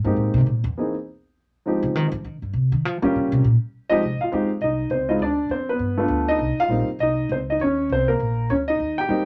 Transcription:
0.04 0.16 G2 medium
0.04 0.44 G#3 medium
0.04 0.44 A#3 medium
0.04 0.44 C4 medium
0.04 0.45 D#4 medium
0.04 0.45 G4 medium
0.16 0.33 A2 medium
0.34 0.46 C3 loud
0.64 0.71 E2 medium
0.78 0.93 E3 medium
0.78 0.93 A#3 soft
0.78 0.94 C4 soft
0.78 0.94 D#4 soft
0.78 0.94 G#4 medium
1.66 2.10 F3 medium
1.66 2.09 G#3 soft
1.66 2.10 C4 soft
1.66 2.10 D#4 soft
1.66 2.10 G4 medium
1.83 1.95 C#3 medium
1.95 2.11 D#3 medium
2.12 2.23 F3 loud
2.25 2.42 D#3 medium
2.42 2.53 G2 medium
2.54 2.71 C3 medium
2.72 2.85 D#3 medium
2.85 3.02 F3 loud
3.02 3.13 D#3 medium
3.02 3.41 G3 medium
3.02 3.41 A#3 medium
3.02 3.41 C#4 medium
3.02 3.41 F4 medium
3.02 3.42 G4 medium
3.16 3.31 C#3 medium
3.32 3.43 C3 loud
3.44 3.55 A#2 medium
3.90 4.01 F3 medium
3.90 4.01 G#3 medium
3.90 4.01 C4 medium
3.90 4.02 D#4 medium
3.90 4.02 G4 medium
3.90 4.21 D#5 loud
4.02 4.19 F1 medium
4.21 4.50 F4 medium
4.21 4.48 F5 medium
4.21 muted upright bass stroke soft
4.32 4.60 F2 medium
4.32 4.48 G#3 medium
4.32 4.48 C4 medium
4.32 4.49 D#4 medium
4.32 4.49 G4 medium
4.61 4.89 C2 medium
4.61 4.90 D#4 medium
4.61 4.92 D#5 medium
4.90 5.18 C#2 medium
4.90 5.07 C4 soft
4.90 5.10 C5 medium
5.09 5.20 G#3 medium
5.09 5.20 C4 medium
5.09 5.21 D#4 medium
5.09 5.20 E4 medium
5.09 5.20 F4 medium
5.09 5.21 D#5 medium
5.19 5.49 D2 medium
5.19 5.52 D5 medium
5.24 5.50 D4 medium
5.49 5.79 F2 medium
5.49 5.69 C4 medium
5.49 5.70 C5 medium
5.69 5.97 B3 medium
5.69 6.25 B4 medium
5.79 6.08 G2 medium
5.97 6.37 A3 medium
5.97 6.38 B3 medium
5.97 6.38 D4 medium
5.97 6.38 F4 medium
6.08 6.38 D2 medium
6.28 6.58 D#4 medium
6.28 6.59 D#5 medium
6.39 6.56 C2 medium
6.56 6.87 F5 loud
6.56 muted upright bass stroke soft
6.61 6.88 F4 medium
6.68 6.86 A#1 medium
6.68 6.86 G3 medium
6.68 6.86 A#3 medium
6.68 6.86 C4 medium
6.68 6.87 D#4 medium
6.88 muted upright bass stroke soft
6.99 7.28 C2 medium
6.99 7.29 D#4 medium
6.99 7.31 D#5 medium
7.29 7.58 C#2 medium
7.29 7.37 C5 medium
7.34 7.39 C4 medium
7.50 7.61 D#4 medium
7.50 7.61 D#5 medium
7.60 7.88 D#2 medium
7.60 7.89 C#4 medium
7.60 7.91 C#5 medium
7.89 8.18 C2 medium
7.89 8.09 C5 medium
7.95 8.09 C4 medium
8.08 8.47 A#3 medium
8.08 8.46 A#4 medium
8.20 8.48 A#1 medium
8.50 8.78 D2 medium
8.50 8.56 C#4 medium
8.50 8.55 C#5 medium
8.68 8.96 D#4 medium
8.68 8.95 D#5 medium
8.80 9.08 D#2 medium
8.98 9.25 G4 medium
8.98 9.25 G5 medium
9.08 9.25 F2 medium
9.08 9.25 G3 medium
9.08 9.25 A#3 soft
9.08 9.25 C4 medium
9.08 9.25 D#4 medium

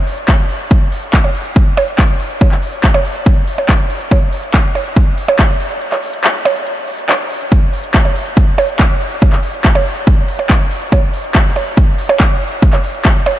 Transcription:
0.07 open hi-hat loud
0.18 closed hi-hat medium
0.28 kick loud
0.28 clap loud
0.28 closed hi-hat medium
0.28 percussion blips soft
0.50 open hi-hat loud
0.60 closed hi-hat medium
0.71 kick loud
0.71 closed hi-hat medium
0.92 open hi-hat loud
1.03 closed hi-hat medium
1.14 kick loud
1.14 clap loud
1.14 closed hi-hat medium
1.24 percussion blips soft
1.35 open hi-hat loud
1.45 closed hi-hat medium
1.56 kick loud
1.56 closed hi-hat medium
1.77 open hi-hat loud
1.77 percussion blips medium
1.88 closed hi-hat medium
1.99 kick loud
1.99 clap loud
1.99 closed hi-hat medium
2.20 open hi-hat loud
2.31 closed hi-hat medium
2.41 kick loud
2.41 closed hi-hat medium
2.41 percussion blips soft
2.52 clap soft
2.62 open hi-hat loud
2.73 closed hi-hat medium
2.84 kick loud
2.84 clap loud
2.84 closed hi-hat medium
2.94 percussion blips medium
3.05 open hi-hat loud
3.16 closed hi-hat medium
3.26 kick loud
3.26 closed hi-hat medium
3.48 open hi-hat loud
3.58 closed hi-hat medium
3.58 percussion blips soft
3.69 kick loud
3.69 clap loud
3.69 closed hi-hat medium
3.90 open hi-hat medium
4.01 closed hi-hat medium
4.11 kick loud
4.11 closed hi-hat medium
4.11 percussion blips medium
4.33 open hi-hat loud
4.43 closed hi-hat medium
4.54 kick loud
4.54 clap loud
4.54 closed hi-hat medium
4.75 open hi-hat medium
4.75 percussion blips soft
4.86 closed hi-hat medium
4.96 kick loud
4.96 closed hi-hat medium
5.18 open hi-hat loud
5.28 closed hi-hat medium
5.28 percussion blips medium
5.39 kick loud
5.39 clap loud
5.39 closed hi-hat medium
5.60 open hi-hat medium
5.71 closed hi-hat medium
5.82 closed hi-hat medium
5.92 clap soft
5.92 percussion blips soft
6.03 open hi-hat loud
6.13 closed hi-hat medium
6.24 clap loud
6.24 closed hi-hat medium
6.45 open hi-hat loud
6.45 percussion blips medium
6.56 closed hi-hat medium
6.67 closed hi-hat medium
6.88 open hi-hat loud
6.99 closed hi-hat medium
7.09 clap loud
7.09 closed hi-hat medium
7.09 percussion blips soft
7.31 open hi-hat medium
7.41 closed hi-hat medium
7.52 kick loud
7.52 closed hi-hat medium
7.73 open hi-hat loud
7.84 closed hi-hat medium
7.94 kick loud
7.94 clap loud
7.94 closed hi-hat medium
8.05 percussion blips soft
8.16 open hi-hat loud
8.26 closed hi-hat medium
8.37 kick loud
8.37 closed hi-hat medium
8.58 open hi-hat loud
8.58 percussion blips medium
8.69 closed hi-hat medium
8.79 kick loud
8.79 clap loud
8.79 closed hi-hat medium
9.01 open hi-hat medium
9.11 closed hi-hat medium
9.22 kick loud
9.22 closed hi-hat medium
9.22 percussion blips soft
9.33 clap soft
9.43 open hi-hat loud
9.54 closed hi-hat medium
9.65 kick loud
9.65 clap loud
9.65 closed hi-hat medium
9.75 percussion blips medium
9.86 open hi-hat loud
9.96 closed hi-hat medium
10.07 kick loud
10.07 closed hi-hat medium
10.28 open hi-hat loud
10.39 closed hi-hat medium
10.39 percussion blips soft
10.50 kick loud
10.50 clap loud
10.50 closed hi-hat medium
10.71 open hi-hat loud
10.82 closed hi-hat medium
10.92 kick loud
10.92 closed hi-hat medium
10.92 percussion blips medium
11.13 open hi-hat loud
11.24 closed hi-hat medium
11.35 kick loud
11.35 clap loud
11.35 closed hi-hat medium
11.56 open hi-hat loud
11.56 percussion blips soft
11.67 closed hi-hat medium
11.77 kick loud
11.77 closed hi-hat medium
11.99 open hi-hat loud
12.09 closed hi-hat medium
12.09 percussion blips medium
12.20 kick loud
12.20 clap loud
12.20 closed hi-hat medium
12.41 open hi-hat loud
12.52 closed hi-hat medium
12.62 kick loud
12.62 closed hi-hat medium
12.73 clap soft
12.73 percussion blips soft
12.84 open hi-hat loud
12.94 closed hi-hat medium
13.05 kick loud
13.05 clap loud
13.05 closed hi-hat medium
13.26 open hi-hat loud
13.26 percussion blips medium

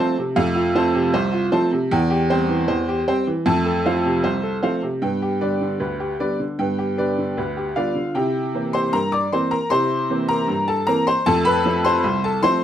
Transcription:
0.00 0.19 F3 medium
0.00 0.19 A3 medium
0.00 0.20 C4 medium
0.00 0.15 C5 medium
0.00 0.15 A5 medium
0.18 0.48 C3 medium
0.36 0.69 F2 loud
0.36 0.59 A3 medium
0.36 0.67 F5 medium
0.55 0.86 F4 medium
0.75 0.96 F3 medium
0.75 0.97 A3 medium
0.75 0.97 C4 medium
0.75 0.93 C5 medium
0.75 0.93 A5 medium
0.94 1.25 C3 medium
1.14 1.47 C2 loud
1.14 1.45 C5 medium
1.33 1.64 F4 medium
1.52 1.74 F3 medium
1.52 1.74 A3 medium
1.52 1.74 C4 medium
1.52 1.70 C5 medium
1.52 1.70 A5 medium
1.71 1.91 C3 medium
1.91 2.24 E2 loud
1.91 2.22 G5 loud
2.10 2.41 G4 medium
2.30 2.51 G3 medium
2.30 2.51 C4 medium
2.30 2.47 C5 medium
2.30 2.48 G5 medium
2.49 2.80 E3 medium
2.68 3.01 E2 medium
2.68 2.99 C5 medium
2.89 3.19 G4 medium
3.07 3.29 G3 medium
3.07 3.29 C4 medium
3.07 3.25 C5 medium
3.07 3.25 G5 medium
3.27 3.46 E3 medium
3.46 3.79 F2 loud
3.46 3.69 A3 medium
3.46 3.77 A5 medium
3.66 3.97 A4 medium
3.86 4.07 F3 medium
3.86 4.07 A3 medium
3.86 4.07 C4 medium
3.86 4.03 C5 medium
3.86 4.03 F5 medium
4.05 4.36 C3 medium
4.24 4.57 C2 medium
4.24 4.55 C5 medium
4.43 4.74 A4 medium
4.63 4.84 F3 medium
4.63 4.85 A3 medium
4.63 4.85 C4 medium
4.63 4.80 C5 medium
4.63 4.81 F5 medium
4.82 5.02 C3 medium
5.02 5.35 G2 medium
5.02 5.25 B3 medium
5.02 5.33 G5 medium
5.22 5.53 G4 medium
5.41 5.59 D3 medium
5.41 5.63 G3 medium
5.41 5.63 B3 medium
5.41 5.59 B4 medium
5.41 5.59 D5 medium
5.61 5.92 D3 medium
5.80 6.13 D2 medium
5.80 6.11 B4 medium
6.00 6.31 G4 medium
6.20 6.38 D3 medium
6.20 6.42 G3 medium
6.20 6.42 B3 medium
6.20 6.37 B4 medium
6.20 6.37 D5 medium
6.39 6.70 D3 medium
6.59 6.92 G2 medium
6.59 6.82 B3 medium
6.59 6.90 G5 medium
6.79 7.10 G4 medium
6.98 7.16 D3 medium
6.98 7.20 G3 soft
6.98 7.20 B3 medium
6.98 7.15 B4 medium
6.98 7.16 D5 medium
7.18 7.49 D3 medium
7.37 7.71 D2 medium
7.37 7.68 B4 medium
7.57 7.88 G4 medium
7.76 7.94 D3 medium
7.76 7.98 G3 soft
7.76 7.99 B3 soft
7.76 8.13 F4 medium
7.76 7.94 B4 medium
7.76 7.94 D5 medium
7.76 8.15 F5 medium
7.95 8.15 D3 medium
8.15 8.48 C3 medium
8.15 8.38 E4 medium
8.15 8.70 G4 medium
8.15 8.74 G5 medium
8.55 8.76 E3 medium
8.55 8.76 A#3 medium
8.55 8.77 C4 soft
8.73 8.92 C5 medium
8.73 8.93 C6 medium
8.93 9.26 G2 medium
8.93 9.12 A#4 medium
8.93 9.13 A#5 loud
9.12 9.31 D5 medium
9.12 9.32 D6 medium
9.32 9.54 E3 medium
9.32 9.54 A#3 medium
9.32 9.54 C4 medium
9.32 9.51 C5 medium
9.32 9.52 C6 medium
9.51 9.70 A#4 medium
9.51 9.71 A#5 medium
9.70 10.04 C3 medium
9.70 9.94 E4 medium
9.70 10.25 C5 medium
9.70 10.29 C6 loud
10.10 10.31 E3 medium
10.10 10.31 A#3 soft
10.10 10.32 C4 medium
10.29 10.66 A#4 medium
10.29 10.68 A#5 loud
10.48 10.81 G2 medium
10.68 10.87 A4 medium
10.68 10.87 A5 medium
10.87 11.09 E3 medium
10.87 11.09 A#3 medium
10.87 11.09 C4 medium
10.87 11.06 A#4 medium
10.87 11.06 A#5 loud
11.07 11.25 C5 medium
11.07 11.26 C6 loud
11.26 11.60 F2 loud
11.26 11.49 A3 medium
11.26 11.45 A4 loud
11.26 11.46 A5 loud
11.45 11.82 B4 loud
11.45 11.84 B5 loud
11.65 11.87 F3 medium
11.65 11.87 A3 medium
11.65 11.87 C4 medium
11.85 12.21 C5 medium
11.85 12.23 C6 loud
12.04 12.37 C2 medium
12.24 12.42 A4 medium
12.24 12.43 A5 loud
12.43 12.64 F3 medium
12.43 12.64 A3 medium
12.43 12.64 C4 medium
12.43 12.64 C5 medium
12.43 12.64 C6 loud

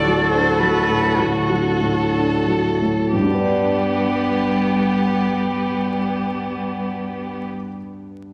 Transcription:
0.00 1.17 D2 soft
0.00 0.20 A2 soft
0.00 2.79 F#4 medium
0.00 1.19 A4 medium
0.00 0.31 D5 medium
0.05 0.48 F#3 soft
0.30 0.76 D4 soft
0.30 0.61 C5 medium
0.59 1.06 F#3 soft
0.59 1.20 B4 medium
0.89 1.36 A2 soft
1.17 3.09 D2 soft
1.17 2.12 F#4 medium
1.17 3.11 A4 medium
1.50 2.00 F#3 soft
1.81 2.33 A2 soft
2.14 2.68 D4 soft
2.47 3.00 F#3 soft
2.82 3.13 A2 soft
3.11 7.47 G2 soft
3.11 7.47 G3 medium
3.11 7.45 B3 medium
3.11 7.46 G4 medium
3.20 7.54 G3 soft
3.27 7.61 D4 soft
3.34 7.68 B4 soft
3.41 7.75 D5 soft

